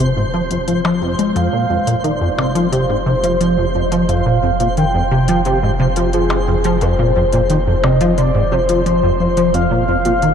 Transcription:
Already playing: sub bass F1, synth texture C5
0.00 analog synth bass C3, closed hi-hat
0.17 analog synth bass G#2
0.34 analog synth bass F3
0.51 analog synth bass F2, closed hi-hat
0.68 analog synth bass F3, closed hi-hat
0.85 analog synth bass F3, percussion blips
1.02 analog synth bass F2
1.19 analog synth bass G#3, closed hi-hat
1.35 sub bass F1, analog synth bass F2, analog synth lead F5, closed hi-hat
1.53 analog synth bass A#2
1.70 analog synth bass F2
1.87 analog synth bass A#2, closed hi-hat
2.04 analog synth bass D#3, analog synth lead D5, closed hi-hat
2.21 analog synth bass F2
2.38 analog synth bass C3, percussion blips
2.55 analog synth bass F3, closed hi-hat
2.72 analog synth bass C3, analog synth lead C5, closed hi-hat
2.89 analog synth bass G#2
3.06 analog synth bass C3, analog synth lead C5
3.23 analog synth bass F3, closed hi-hat
3.41 analog synth bass F3, closed hi-hat
3.58 analog synth bass F2
3.75 analog synth bass F2, analog synth lead D#5
3.92 analog synth bass F3, closed hi-hat
4.08 analog synth bass F2, analog synth lead F5, closed hi-hat
4.26 analog synth bass A#2
4.43 analog synth bass F2
4.60 analog synth bass A#2, closed hi-hat
4.77 analog synth bass D#3, analog synth lead G5, closed hi-hat
4.94 analog synth bass F2
5.11 analog synth bass C3
5.28 analog synth bass F3, closed hi-hat
5.45 analog synth bass C3, closed hi-hat
5.63 analog synth bass G#2
5.79 analog synth bass C3
5.96 analog synth bass F3, closed hi-hat
6.13 analog synth bass F3, analog synth lead G#4, closed hi-hat
6.30 analog synth bass F2, percussion blips
6.48 analog synth bass F2
6.64 analog synth bass F3, closed hi-hat
6.81 analog synth bass F2, analog synth lead C5, closed hi-hat
6.99 analog synth bass A#2
7.16 analog synth bass F2
7.33 analog synth bass A#2, closed hi-hat
7.50 analog synth bass D#3, closed hi-hat
7.67 analog synth bass F2
7.83 analog synth bass C3, analog synth lead D#5, percussion blips
8.01 analog synth bass F3, closed hi-hat
8.18 analog synth bass C3, analog synth lead D5, closed hi-hat
8.35 analog synth bass G#2
8.52 analog synth bass C3, analog synth lead C5
8.69 analog synth bass F3, closed hi-hat
8.86 analog synth bass F3, closed hi-hat
9.03 analog synth bass F2
9.20 analog synth bass F2
9.37 analog synth bass F3, closed hi-hat
9.54 analog synth bass F2, analog synth lead F5, closed hi-hat
9.71 analog synth bass A#2
9.88 analog synth bass F2
10.05 analog synth bass A#2, closed hi-hat
10.22 analog synth bass D#3, closed hi-hat

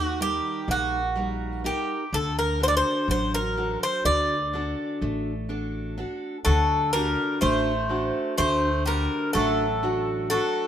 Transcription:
Already playing: upright bass D#2, steel-string acoustic guitar D#3, bouzouki F#4
0.20 steel-string acoustic guitar G3 D#4 A#4, bouzouki G4
0.68 upright bass A#1, steel-string acoustic guitar A#3, bouzouki F#4
1.16 steel-string acoustic guitar G3 D#4 A#4
1.64 steel-string acoustic guitar D#4 G4 A#4, bouzouki G4
2.13 upright bass D2, steel-string acoustic guitar D3, bouzouki A4
2.39 bouzouki A#4
2.60 steel-string acoustic guitar D4 F#4 A4, bouzouki C5
2.68 bouzouki D5
2.77 bouzouki C5
3.08 upright bass A1, steel-string acoustic guitar F#3, bouzouki C5
3.34 bouzouki A#4
3.57 steel-string acoustic guitar D4 F#4 A4
3.83 bouzouki C5
4.05 upright bass D2, steel-string acoustic guitar D3, bouzouki D5
4.53 steel-string acoustic guitar D4 F#4 A4
5.01 upright bass A1, steel-string acoustic guitar A3
5.49 steel-string acoustic guitar D4 F#4 A4
5.98 steel-string acoustic guitar D4 F#4 A4
6.45 upright bass D2, steel-string acoustic guitar D3, bouzouki F#3 A4
6.93 bouzouki G3 A#4, steel-string acoustic guitar D4 F#4
7.41 upright bass A1, bouzouki A3 C5, steel-string acoustic guitar A3
7.89 steel-string acoustic guitar D4 F#4 A4
8.38 upright bass D2, steel-string acoustic guitar D3, bouzouki A3 C5
8.86 bouzouki G3 A#4, steel-string acoustic guitar D4 F#4
9.33 upright bass A1, bouzouki F#3 A4, steel-string acoustic guitar A3
9.83 steel-string acoustic guitar D4 F#4 A4
10.30 bouzouki F#3 A4, steel-string acoustic guitar D4 F#4 A4

